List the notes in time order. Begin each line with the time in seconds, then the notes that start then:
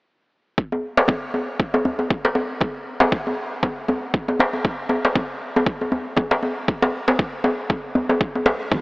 0.58 kick
0.72 djembe tone
0.97 djembe slap
1.08 kick, djembe tone
1.34 djembe tone
1.60 kick
1.74 djembe tone
1.85 djembe bass
1.99 djembe tone
2.10 kick
2.25 djembe slap
2.35 djembe tone
2.61 kick, djembe tone
3.00 djembe slap, djembe tone
3.12 kick
3.27 djembe tone
3.63 kick, djembe tone
3.88 djembe tone, djembe bass
4.14 kick
4.28 djembe tone
4.39 djembe slap, djembe bass
4.53 djembe tone
4.65 kick
4.89 djembe tone
5.05 djembe slap
5.15 kick, djembe tone
5.56 djembe tone
5.66 kick
5.81 djembe tone
5.92 djembe bass
6.17 kick, djembe tone
6.31 djembe slap
6.43 djembe tone
6.68 kick
6.82 djembe slap, djembe tone
7.08 djembe slap, djembe tone
7.19 kick
7.44 djembe tone
7.70 kick, djembe tone
7.95 djembe bass
8.09 djembe tone
8.21 kick
8.35 djembe tone
8.46 djembe slap, djembe bass
8.72 kick, muted conga, high conga